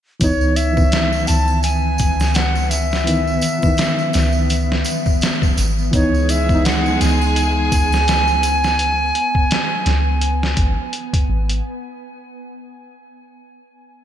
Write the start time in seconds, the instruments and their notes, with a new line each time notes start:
0.20 808-style bass C#2, reed electric piano E3 B3, synth drone B3, flute C#5, kick, closed hi-hat, tambourine
0.24 reed electric piano D#4
0.41 tambourine
0.56 flute E5, closed hi-hat, tambourine
0.73 reed electric piano E3, kick, tambourine
0.78 reed electric piano B3
0.82 reed electric piano D#3
0.92 snare, closed hi-hat, tambourine
1.13 tambourine
1.27 808-style bass C#2, flute A5, closed hi-hat, tambourine
1.48 tambourine, triangle
1.63 flute G#5, closed hi-hat, tambourine
1.98 808-style bass C#2, kick, closed hi-hat, tambourine
2.20 snare, tambourine, triangle
2.34 flute F#5, snare, closed hi-hat, tambourine
2.55 tambourine
2.70 flute E5, closed hi-hat, tambourine
2.91 snare, tambourine
3.04 reed electric piano E3 B3, closed hi-hat, tambourine
3.09 reed electric piano D#3
3.27 tambourine
3.41 closed hi-hat, tambourine
3.59 reed electric piano E3, tambourine, triangle
3.63 reed electric piano B3, kick
3.67 reed electric piano D#3
3.77 snare, closed hi-hat, tambourine
3.99 tambourine
4.13 808-style bass C#2, snare, closed hi-hat, tambourine
4.33 tambourine
4.50 closed hi-hat, tambourine
4.72 snare
4.84 closed hi-hat, tambourine
5.06 kick, tambourine
5.21 snare, closed hi-hat, tambourine
5.42 kick, tambourine
5.57 808-style bass G#1, closed hi-hat, tambourine
5.78 tambourine
5.91 808-style bass C#2, reed electric piano E3 B3 D#4, string section G#3 G#4, flute C#5, kick, closed hi-hat, tambourine
6.14 tambourine
6.29 flute E5, closed hi-hat, tambourine
6.46 reed electric piano E3, kick, tambourine
6.50 reed electric piano B3
6.55 reed electric piano D#4
6.65 flute F#5, snare, closed hi-hat, tambourine
6.86 tambourine
7.01 808-style bass C#2, flute G#5, snare, closed hi-hat, tambourine
7.22 tambourine, triangle
7.36 closed hi-hat, tambourine
7.72 808-style bass C#2, kick, closed hi-hat, tambourine
7.92 snare, tambourine, triangle
8.08 snare, closed hi-hat, tambourine
8.28 tambourine
8.43 closed hi-hat, tambourine
8.64 snare, tambourine
8.79 closed hi-hat
9.15 closed hi-hat
9.35 kick
9.51 snare, closed hi-hat
9.86 808-style bass C#2, snare, closed hi-hat
10.21 closed hi-hat
10.43 snare
10.57 808-style bass G#1, kick, closed hi-hat
10.93 closed hi-hat
11.13 kick, closed hi-hat
11.29 808-style bass G#1
11.49 closed hi-hat